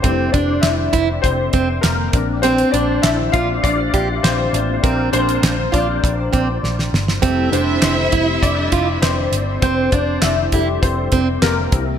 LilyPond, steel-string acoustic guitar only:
\new Staff \with { instrumentName = "Steel-string acoustic guitar" } { \time 4/4 \key f \major \tempo 4 = 100 c'8 d'8. r16 e'16 r8. c'16 r4 r16 | c'8 d'8. r16 f'16 r8. g'16 r4 r16 | c'8 d'8. r16 f'16 r8. c'16 r4 r16 | c'8 d'8. r16 e'16 r8. f'16 r4 r16 |
c'8 d'8. r16 e'16 r8. c'16 r4 r16 | }